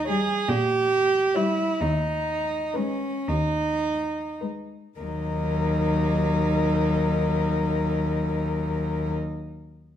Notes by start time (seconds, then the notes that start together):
Already playing: D#2
0.05 G3 C#5
0.09 G#4
0.48 A#2 G4
1.34 G3 E4 C#5
1.80 D#2 D#4
2.74 G#3 C#4 B4
3.28 D#2 D#4
4.41 G#3 B4
4.99 D#2 F#3 D#4 A#4